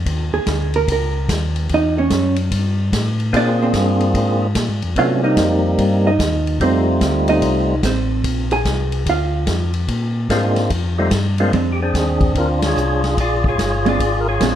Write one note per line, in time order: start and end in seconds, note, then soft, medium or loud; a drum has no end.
0.06 0.31 D#2 medium
0.06 kick soft
0.06 ride medium
0.33 0.40 D#2 soft
0.33 0.71 G#4 medium
0.46 0.87 D2 medium
0.46 kick soft
0.46 snare medium
0.46 hi-hat pedal soft
0.46 ride medium
0.74 0.89 A#4 medium
0.74 ride soft
0.88 1.28 C#2 medium
0.88 kick soft
0.88 ride medium
0.92 1.28 A#4 medium
1.28 1.68 D#2 medium
1.28 kick soft
1.28 snare medium
1.28 hi-hat pedal medium
1.28 ride medium
1.56 ride soft
1.69 2.09 E2 medium
1.69 kick soft
1.69 ride medium
1.74 1.98 D#4 medium
1.74 1.98 D#5 medium
1.98 2.36 C#4 medium
1.98 2.35 C#5 medium
2.10 2.50 F#2 medium
2.10 kick soft
2.10 snare medium
2.10 hi-hat pedal medium
2.10 ride medium
2.36 ride medium
2.51 2.91 G2 medium
2.51 kick soft
2.51 ride medium
2.92 3.32 A2 medium
2.92 kick soft
2.92 snare medium
2.92 hi-hat pedal medium
2.92 ride medium
3.20 ride soft
3.33 3.73 A#2 medium
3.33 4.47 A#3 medium
3.33 4.47 C4 medium
3.33 4.47 D4 medium
3.33 4.47 F4 medium
3.33 4.47 G#4 medium
3.33 3.61 D5 loud
3.33 kick soft
3.33 ride medium
3.37 3.61 D4 medium
3.62 4.00 C4 medium
3.62 3.99 C5 medium
3.73 4.13 G2 medium
3.73 kick soft
3.73 snare medium
3.73 hi-hat pedal medium
3.73 ride medium
4.00 ride soft
4.14 4.54 G#2 medium
4.14 kick soft
4.14 ride medium
4.55 4.69 A#2 medium
4.55 kick soft
4.55 snare medium
4.55 hi-hat pedal medium
4.55 ride medium
4.68 4.83 G#2 medium
4.82 4.96 F2 medium
4.82 ride soft
4.96 5.36 C3 medium
4.96 5.21 F#3 medium
4.96 5.21 A3 medium
4.96 5.21 B3 medium
4.96 5.21 C#4 medium
4.96 5.21 D4 medium
4.96 5.24 F4 medium
4.96 5.24 F5 medium
4.96 kick soft
4.96 ride medium
5.23 6.11 G3 medium
5.23 6.11 A#3 medium
5.23 6.11 C4 medium
5.23 6.11 D#4 medium
5.23 5.62 D#4 medium
5.23 5.62 D#5 medium
5.36 5.77 F2 medium
5.36 kick soft
5.36 snare medium
5.36 hi-hat pedal medium
5.36 ride medium
5.78 6.18 G2 medium
5.78 kick soft
5.78 ride medium
6.07 6.58 D#4 medium
6.07 6.58 D#5 medium
6.19 6.59 D#2 medium
6.19 kick soft
6.19 snare medium
6.19 hi-hat pedal medium
6.19 ride medium
6.47 ride soft
6.60 7.00 F2 medium
6.60 7.75 G3 medium
6.60 7.75 A3 medium
6.60 7.75 C4 medium
6.60 7.26 C4 medium
6.60 7.75 D#4 medium
6.60 7.76 F4 medium
6.60 7.25 C5 medium
6.60 kick soft
6.60 ride medium
7.01 7.41 D2 medium
7.01 kick soft
7.01 snare medium
7.01 hi-hat pedal medium
7.01 ride medium
7.28 7.80 D#4 medium
7.28 7.80 D#5 loud
7.28 ride medium
7.42 7.82 C2 medium
7.42 kick soft
7.42 ride medium
7.83 8.23 A1 medium
7.83 8.48 C4 medium
7.83 8.48 C5 medium
7.83 kick soft
7.83 snare medium
7.83 hi-hat pedal medium
7.83 ride medium
8.24 8.64 A#1 medium
8.24 kick soft
8.24 ride medium
8.51 9.03 G#4 medium
8.51 9.03 G#5 loud
8.51 ride soft
8.65 9.05 C2 medium
8.65 kick soft
8.65 snare medium
8.65 hi-hat pedal medium
8.65 ride medium
8.92 ride soft
9.06 9.46 D2 medium
9.06 9.72 F4 medium
9.06 9.72 F5 medium
9.06 kick soft
9.06 ride medium
9.47 9.87 F2 loud
9.47 kick soft
9.47 snare medium
9.47 hi-hat pedal medium
9.47 ride medium
9.74 ride soft
9.88 10.28 A#2 medium
9.88 kick soft
9.88 ride medium
10.29 10.69 G#2 medium
10.29 10.71 G#3 medium
10.29 10.71 A#3 medium
10.29 10.71 C4 medium
10.29 10.71 D4 medium
10.29 10.71 F4 medium
10.29 kick soft
10.29 snare medium
10.29 hi-hat pedal medium
10.29 ride medium
10.56 snare soft
10.56 ride medium
10.70 11.10 F2 medium
10.70 kick soft
10.70 ride medium
10.98 11.11 G3 medium
10.98 11.11 A3 medium
10.98 11.11 C4 medium
10.98 11.11 D#4 medium
10.98 11.11 F4 medium
11.11 11.51 G2 loud
11.11 kick soft
11.11 snare medium
11.11 hi-hat pedal medium
11.11 ride medium
11.38 11.52 G#3 medium
11.38 11.52 A#3 medium
11.38 11.52 C4 medium
11.38 11.52 D4 medium
11.38 11.52 F4 medium
11.38 ride soft
11.52 11.92 F2 medium
11.52 11.77 G#3 medium
11.52 11.77 C4 medium
11.52 11.78 D4 medium
11.52 kick soft
11.52 ride medium
11.72 11.81 G4 medium
11.82 12.59 C4 medium
11.82 12.37 D4 medium
11.82 12.33 G#4 medium
11.94 12.34 D#2 medium
11.94 kick soft
11.94 snare medium
11.94 hi-hat pedal soft
11.94 ride medium
12.21 kick medium
12.21 ride soft
12.35 12.75 D2 medium
12.35 13.15 D4 medium
12.35 12.65 F4 medium
12.35 12.49 A#4 medium
12.35 kick soft
12.35 ride medium
12.62 13.02 C#5 medium
12.62 snare medium
12.62 ride medium
12.67 13.20 F4 medium
12.67 13.19 G#4 medium
12.76 13.16 C2 medium
12.76 hi-hat pedal medium
13.04 snare soft
13.04 ride soft
13.17 13.57 A#1 medium
13.17 13.47 F4 medium
13.17 13.47 G#4 medium
13.17 13.46 D5 loud
13.17 kick soft
13.17 ride medium
13.44 13.89 F4 medium
13.44 kick soft
13.48 13.88 G#4 medium
13.48 13.89 C#5 medium
13.58 13.98 G1 medium
13.58 kick soft
13.58 snare medium
13.58 hi-hat pedal medium
13.58 ride medium
13.86 13.98 G#3 medium
13.86 13.99 C4 medium
13.86 13.99 D4 medium
13.86 14.27 G#4 medium
13.86 14.20 D5 loud
13.86 ride soft
13.90 14.28 F4 medium
13.99 14.39 G#1 medium
13.99 kick soft
13.99 ride medium
14.20 14.28 A#4 medium
14.29 14.55 F4 medium
14.29 14.55 G#4 medium
14.29 14.55 C#5 medium
14.40 14.55 A#1 medium
14.40 14.55 G#3 medium
14.40 14.55 C4 medium
14.40 14.55 D4 medium
14.40 kick soft
14.40 snare medium
14.40 hi-hat pedal medium
14.40 ride medium